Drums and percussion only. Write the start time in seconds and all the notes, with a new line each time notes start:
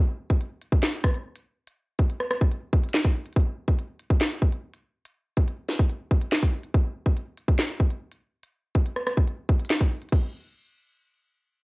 0.30 kick, closed hi-hat
0.41 closed hi-hat
0.62 closed hi-hat
0.72 kick
0.82 snare, clap, closed hi-hat
1.04 kick, cross-stick
1.14 closed hi-hat
1.36 closed hi-hat
1.67 closed hi-hat
1.99 kick, closed hi-hat
2.10 closed hi-hat
2.20 cross-stick
2.31 cross-stick, closed hi-hat
2.41 kick
2.52 closed hi-hat
2.73 kick
2.84 closed hi-hat
2.89 closed hi-hat
2.94 snare, clap, closed hi-hat
2.99 closed hi-hat
3.05 kick, closed hi-hat
3.15 open hi-hat
3.26 closed hi-hat
3.33 kick, closed hi-hat
3.36 closed hi-hat
3.40 closed hi-hat
3.68 kick, closed hi-hat
3.79 closed hi-hat
3.99 closed hi-hat
4.10 kick
4.20 snare, clap, closed hi-hat
4.42 kick
4.52 closed hi-hat
4.74 closed hi-hat
5.05 closed hi-hat
5.37 kick, closed hi-hat
5.48 closed hi-hat
5.68 snare, closed hi-hat
5.79 kick
5.89 closed hi-hat
6.11 kick
6.21 closed hi-hat
6.32 snare, clap
6.43 kick, closed hi-hat
6.53 open hi-hat
6.63 closed hi-hat
6.74 kick, closed hi-hat
7.06 kick, closed hi-hat
7.17 closed hi-hat
7.38 closed hi-hat
7.48 kick
7.58 snare, clap, closed hi-hat
7.80 kick
7.90 closed hi-hat
8.12 closed hi-hat
8.43 closed hi-hat
8.75 kick, closed hi-hat
8.86 closed hi-hat
8.96 cross-stick
9.07 cross-stick, closed hi-hat
9.17 kick
9.28 closed hi-hat
9.49 kick
9.60 closed hi-hat
9.65 closed hi-hat
9.70 snare, clap, closed hi-hat
9.75 closed hi-hat
9.81 kick, closed hi-hat
9.91 open hi-hat
10.02 closed hi-hat
10.09 kick, closed hi-hat, crash
10.16 closed hi-hat